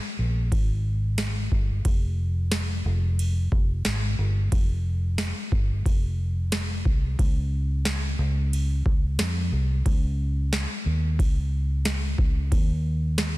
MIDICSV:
0, 0, Header, 1, 3, 480
1, 0, Start_track
1, 0, Tempo, 666667
1, 1333, Time_signature, 4, 2, 24, 8
1, 9632, End_track
2, 0, Start_track
2, 0, Title_t, "Fingered electric bass"
2, 0, Program_c, 0, 33
2, 135, Note_on_c, 0, 34, 81
2, 362, Note_off_c, 0, 34, 0
2, 374, Note_on_c, 0, 32, 106
2, 1065, Note_off_c, 0, 32, 0
2, 1093, Note_on_c, 0, 31, 95
2, 1321, Note_off_c, 0, 31, 0
2, 1333, Note_on_c, 0, 29, 107
2, 2024, Note_off_c, 0, 29, 0
2, 2054, Note_on_c, 0, 29, 102
2, 2510, Note_off_c, 0, 29, 0
2, 2532, Note_on_c, 0, 29, 100
2, 2761, Note_off_c, 0, 29, 0
2, 2778, Note_on_c, 0, 32, 94
2, 3004, Note_off_c, 0, 32, 0
2, 3013, Note_on_c, 0, 31, 102
2, 3241, Note_off_c, 0, 31, 0
2, 3254, Note_on_c, 0, 29, 109
2, 3825, Note_off_c, 0, 29, 0
2, 3975, Note_on_c, 0, 31, 94
2, 4202, Note_off_c, 0, 31, 0
2, 4217, Note_on_c, 0, 29, 98
2, 4906, Note_off_c, 0, 29, 0
2, 4936, Note_on_c, 0, 36, 91
2, 5162, Note_off_c, 0, 36, 0
2, 5178, Note_on_c, 0, 37, 112
2, 5867, Note_off_c, 0, 37, 0
2, 5895, Note_on_c, 0, 37, 108
2, 6350, Note_off_c, 0, 37, 0
2, 6377, Note_on_c, 0, 37, 102
2, 6603, Note_off_c, 0, 37, 0
2, 6612, Note_on_c, 0, 41, 93
2, 6841, Note_off_c, 0, 41, 0
2, 6857, Note_on_c, 0, 36, 95
2, 7083, Note_off_c, 0, 36, 0
2, 7098, Note_on_c, 0, 37, 110
2, 7667, Note_off_c, 0, 37, 0
2, 7817, Note_on_c, 0, 39, 92
2, 8043, Note_off_c, 0, 39, 0
2, 8058, Note_on_c, 0, 37, 109
2, 8747, Note_off_c, 0, 37, 0
2, 8774, Note_on_c, 0, 37, 92
2, 9001, Note_off_c, 0, 37, 0
2, 9011, Note_on_c, 0, 39, 115
2, 9632, Note_off_c, 0, 39, 0
2, 9632, End_track
3, 0, Start_track
3, 0, Title_t, "Drums"
3, 373, Note_on_c, 9, 36, 92
3, 375, Note_on_c, 9, 51, 54
3, 445, Note_off_c, 9, 36, 0
3, 447, Note_off_c, 9, 51, 0
3, 848, Note_on_c, 9, 51, 63
3, 850, Note_on_c, 9, 38, 112
3, 850, Note_on_c, 9, 54, 70
3, 920, Note_off_c, 9, 51, 0
3, 922, Note_off_c, 9, 38, 0
3, 922, Note_off_c, 9, 54, 0
3, 1092, Note_on_c, 9, 36, 85
3, 1164, Note_off_c, 9, 36, 0
3, 1332, Note_on_c, 9, 51, 57
3, 1333, Note_on_c, 9, 36, 103
3, 1404, Note_off_c, 9, 51, 0
3, 1405, Note_off_c, 9, 36, 0
3, 1811, Note_on_c, 9, 38, 116
3, 1812, Note_on_c, 9, 54, 63
3, 1813, Note_on_c, 9, 51, 65
3, 1883, Note_off_c, 9, 38, 0
3, 1884, Note_off_c, 9, 54, 0
3, 1885, Note_off_c, 9, 51, 0
3, 2298, Note_on_c, 9, 51, 61
3, 2370, Note_off_c, 9, 51, 0
3, 2534, Note_on_c, 9, 36, 96
3, 2606, Note_off_c, 9, 36, 0
3, 2771, Note_on_c, 9, 51, 61
3, 2772, Note_on_c, 9, 38, 120
3, 2772, Note_on_c, 9, 54, 70
3, 2843, Note_off_c, 9, 51, 0
3, 2844, Note_off_c, 9, 38, 0
3, 2844, Note_off_c, 9, 54, 0
3, 3255, Note_on_c, 9, 36, 108
3, 3255, Note_on_c, 9, 51, 62
3, 3327, Note_off_c, 9, 36, 0
3, 3327, Note_off_c, 9, 51, 0
3, 3731, Note_on_c, 9, 38, 113
3, 3732, Note_on_c, 9, 51, 63
3, 3732, Note_on_c, 9, 54, 59
3, 3803, Note_off_c, 9, 38, 0
3, 3804, Note_off_c, 9, 51, 0
3, 3804, Note_off_c, 9, 54, 0
3, 3974, Note_on_c, 9, 36, 99
3, 4046, Note_off_c, 9, 36, 0
3, 4216, Note_on_c, 9, 36, 99
3, 4220, Note_on_c, 9, 51, 59
3, 4288, Note_off_c, 9, 36, 0
3, 4292, Note_off_c, 9, 51, 0
3, 4695, Note_on_c, 9, 51, 66
3, 4696, Note_on_c, 9, 38, 118
3, 4696, Note_on_c, 9, 54, 62
3, 4767, Note_off_c, 9, 51, 0
3, 4768, Note_off_c, 9, 38, 0
3, 4768, Note_off_c, 9, 54, 0
3, 4935, Note_on_c, 9, 36, 85
3, 5007, Note_off_c, 9, 36, 0
3, 5176, Note_on_c, 9, 36, 107
3, 5179, Note_on_c, 9, 51, 58
3, 5248, Note_off_c, 9, 36, 0
3, 5251, Note_off_c, 9, 51, 0
3, 5655, Note_on_c, 9, 38, 109
3, 5656, Note_on_c, 9, 51, 65
3, 5656, Note_on_c, 9, 54, 67
3, 5727, Note_off_c, 9, 38, 0
3, 5728, Note_off_c, 9, 51, 0
3, 5728, Note_off_c, 9, 54, 0
3, 6143, Note_on_c, 9, 51, 61
3, 6215, Note_off_c, 9, 51, 0
3, 6377, Note_on_c, 9, 36, 94
3, 6449, Note_off_c, 9, 36, 0
3, 6616, Note_on_c, 9, 51, 65
3, 6617, Note_on_c, 9, 38, 121
3, 6617, Note_on_c, 9, 54, 64
3, 6688, Note_off_c, 9, 51, 0
3, 6689, Note_off_c, 9, 38, 0
3, 6689, Note_off_c, 9, 54, 0
3, 7097, Note_on_c, 9, 36, 105
3, 7098, Note_on_c, 9, 51, 55
3, 7169, Note_off_c, 9, 36, 0
3, 7170, Note_off_c, 9, 51, 0
3, 7579, Note_on_c, 9, 38, 108
3, 7581, Note_on_c, 9, 51, 60
3, 7581, Note_on_c, 9, 54, 67
3, 7651, Note_off_c, 9, 38, 0
3, 7653, Note_off_c, 9, 51, 0
3, 7653, Note_off_c, 9, 54, 0
3, 8058, Note_on_c, 9, 36, 95
3, 8061, Note_on_c, 9, 51, 60
3, 8130, Note_off_c, 9, 36, 0
3, 8133, Note_off_c, 9, 51, 0
3, 8534, Note_on_c, 9, 51, 68
3, 8535, Note_on_c, 9, 38, 124
3, 8535, Note_on_c, 9, 54, 65
3, 8606, Note_off_c, 9, 51, 0
3, 8607, Note_off_c, 9, 38, 0
3, 8607, Note_off_c, 9, 54, 0
3, 8772, Note_on_c, 9, 36, 89
3, 8844, Note_off_c, 9, 36, 0
3, 9013, Note_on_c, 9, 36, 105
3, 9014, Note_on_c, 9, 51, 56
3, 9085, Note_off_c, 9, 36, 0
3, 9086, Note_off_c, 9, 51, 0
3, 9489, Note_on_c, 9, 38, 110
3, 9491, Note_on_c, 9, 51, 61
3, 9491, Note_on_c, 9, 54, 61
3, 9561, Note_off_c, 9, 38, 0
3, 9563, Note_off_c, 9, 51, 0
3, 9563, Note_off_c, 9, 54, 0
3, 9632, End_track
0, 0, End_of_file